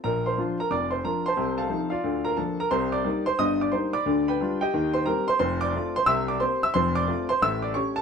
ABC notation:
X:1
M:4/4
L:1/8
Q:"Swing" 1/4=179
K:Bb
V:1 name="Grand piano"
[Bb] [cc']2 [Bb] [dd'] [cc'] [Bb] [cac']- | [cac'] [Afa]2 [Fdf]2 [Bb] [Aa] [Bb] | [cc'] [dd']2 [cc'] [ee'] [dd'] [cc'] [d_c'd']- | [d_c'd'] [=Bg=b]2 [Geg]2 [=c=c'] [_B_b] [cc'] |
[K:F] [cc'] [dd']2 [cc'] [ee'] [dd'] [cc'] [ee'] | [cc'] [dd']2 [cc'] [ee'] [dd'] [^c^c'] [Aa] |]
V:2 name="Grand piano" clef=bass
[B,,,B,,]2 [F,DF]2 [F,,,F,,]2 [F,DF]2 | [C,,C,]2 [F,CE]2 [D,,D,]2 [F,B,D]2 | [C,,C,]2 [G,B,E]2 [G,,,G,,]2 [G,B,E]2 | [D,,D,]2 [G,DF]2 [E,,E,]2 [G,CG]2 |
[K:F] [F,,,F,,]2 [A,CF]2 [C,,C,]2 [B,CG]2 | [F,,,F,,]2 [A,CF]2 [A,,,A,,]2 [A,^CG]2 |]